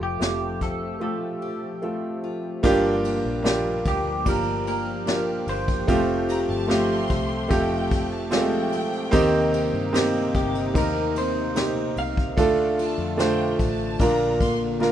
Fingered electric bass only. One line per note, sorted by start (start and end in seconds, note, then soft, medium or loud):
0.00 0.19 F1 medium
0.21 0.98 F1 medium
2.64 3.21 G1 medium
3.25 3.82 A#1 medium
3.85 4.28 D2 medium
4.26 5.44 G1 loud
5.47 5.85 G1 medium
5.89 6.45 F1 loud
6.49 7.06 G1 medium
7.10 7.48 C2 medium
7.51 9.09 F1 loud
9.13 9.70 D#2 loud
9.73 10.36 G2 medium
10.34 10.77 G1 medium
10.75 11.93 D#2 loud
11.96 12.37 C2 medium
12.37 12.94 D2 loud
12.98 13.55 F2 medium
13.59 13.97 A1 medium
14.00 14.92 A#1 loud